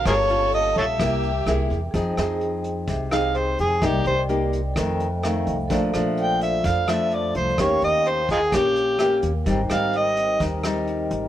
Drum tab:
HH |xxxxxxxx|xxxxxxxx|xxxxxxxx|xxxxxxxx|
SD |r---r-r-|-r---r--|r---r-r-|-r---r--|
BD |o--oo--o|o---o---|o---o---|o---o---|

HH |xxxxxxxx|xxxxxxxx|
SD |r---r-r-|-r---r--|
BD |o--oo---|o---o---|